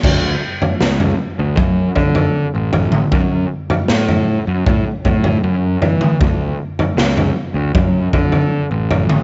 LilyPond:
<<
  \new Staff \with { instrumentName = "Picked electric bass" } { \clef bass \time 4/4 \key d \lydian \tempo 4 = 78 d,8 r8 cis,8 r16 d,16 fis,8 d8. a,,8. | fis,8 r8 a,8. fis,16 a,16 r16 a,8 fis,8 e8 | d,8 r8 cis,8 r16 d,16 fis,8 d8. a,,8. | }
  \new DrumStaff \with { instrumentName = "Drums" } \drummode { \time 4/4 <cymc bd tomfh>8. tomfh16 sn16 tomfh8. <bd tomfh>8 <bd tomfh>16 tomfh16 r8 tomfh16 toml16 | <bd tomfh>8. tomfh16 sn16 tomfh8. <bd tomfh>8 <bd tomfh>16 tomfh16 r8 tomfh16 toml16 | <bd tomfh>8. tomfh16 sn16 tomfh8. <bd tomfh>8 <bd tomfh>16 tomfh16 r8 tomfh16 toml16 | }
>>